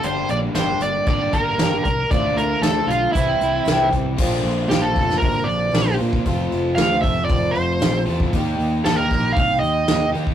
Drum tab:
CC |----------------|----------------|x---------------|----------------|
HH |x-x-x-x-x-x-x-x-|x-x-x-x-x-x-x-x-|--o-o-o-o-o-o-o-|o-o-o-o-o-o-o-o-|
SD |----o-------o---|----o-------o---|----o--o----o---|----o-------o---|
BD |--------o-o---o-|o-------o-----o-|o-----o-o------o|o-----o-o------o|

CC |----------------|
HH |o-o-o-o-o-o-o-o-|
SD |----o-------o---|
BD |o-----o-o------o|